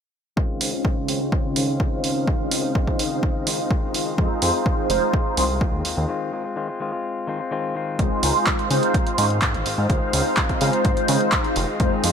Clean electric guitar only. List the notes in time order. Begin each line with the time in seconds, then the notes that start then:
0.37 D#3 G#3 C4 F4
0.60 D#3 G#3 C4 F4
0.73 G#3 C4 F4
0.84 D#3 G#3 C4 F4
0.96 G#3 C4 F4
1.08 D#3 G#3 C4 F4
1.20 G#3 C4 F4
1.56 D#3 G#3 C4 F4
1.68 G#3 C4 F4
1.80 D#3 G#3 C4 F4
2.03 D#3 G#3 C4 F4
2.27 D#3 G#3 C4 F4
2.51 D#3 G#3 C4 F4
2.63 G#3 C4 F4
2.75 D#3 G#3 C4 F4
2.99 D#3 G#3 C4 F4
3.11 G#3 C4 F4
3.46 D#3 G#3 C4 F4
3.58 G#3 C4 F4
3.70 D#3
3.94 D#3 G#3 C4 F4
4.18 D#3 G#3 C4 F4
4.41 D#3 G#3 C4 F4
4.54 G#3 C4 F4
4.65 D#3 G#3 C4 F4
4.89 D#3 G#3 C4 F4
5.01 G#3 C4 F4
5.37 D#3 G#3 C4 F4
5.49 G#3 C4 F4
5.61 D#3 G#3 C4 F4
5.84 D#3 G#3 C4 F4
6.08 D#3 G#3 C4 F4
6.32 D#3 G#3 C4 F4
6.44 G#3 C4 F4
6.56 D#3 G#3 C4 F4
6.68 G#3 C4 F4
6.80 D#3 G#3 C4 F4
6.92 G#3 C4 F4
7.27 D#3 G#3 C4 F4
7.39 G#3 C4 F4
7.51 D#3 G#3 C4 F4
7.75 D#3 G#3 C4 F4
8.22 D#3 G#3 C4 F4
8.35 G#3 C4 F4
8.46 D#3 G#3 C4
8.70 D#3 G#3 C4 F4
8.82 G#3 C4 F4
9.06 G#3 C4 F4
9.18 D#3 G#3 C4 F4
9.42 D#3 C4
9.54 G#3 C4 F4
9.65 D#3 G#3 C4 F4
9.89 D#3 G#3 C4 F4
10.13 D#3 G#3 C4 F4
10.25 G#3 C4 F4
10.37 D#3 G#3 C4 F4
10.60 D#3 G#3 C4 F4
10.73 G#3 C4 F4
10.97 G#3 C4 F4
11.08 D#3 G#3 C4 F4
11.44 G#3 C4 F4
11.55 D#3 G#3 C4 F4
11.68 G#3 C4 F4
11.80 D#3 G#3 C4 F4
12.03 D#3 G#3 C4 F4